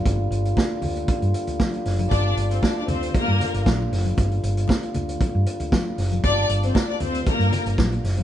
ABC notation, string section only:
X:1
M:4/4
L:1/16
Q:1/4=117
K:Gm
V:1 name="String section"
z16 | [Dd]2 z [Cc] [Dd] [Dd] [Cc]2 [B,B]4 z4 | z16 | [Dd]2 z [Cc] [Dd] [Dd] [Cc]2 [B,B]4 z4 |]